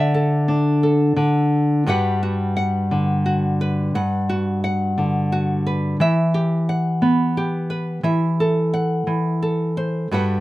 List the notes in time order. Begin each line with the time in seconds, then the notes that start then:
Already playing: D3 D5 E5
0.14 A4
0.48 D4
0.83 A4
1.16 D3
1.86 G2 G3 F#4 B4 F#5
2.23 F#4
2.57 F#5
2.91 D3
3.26 F#4
3.61 B4
3.95 G2 F#5
4.29 F#4
4.64 F#5
4.98 D3
5.32 F#4
5.67 B4
6.00 E3 E5
6.34 G4
6.69 F#5
7.02 B3
7.37 G4
7.70 B4
8.03 E3 E5
8.40 A4
8.74 F#5
9.07 E3
9.42 A4
9.77 C5
10.11 G2 G3 F#4 B4 F#5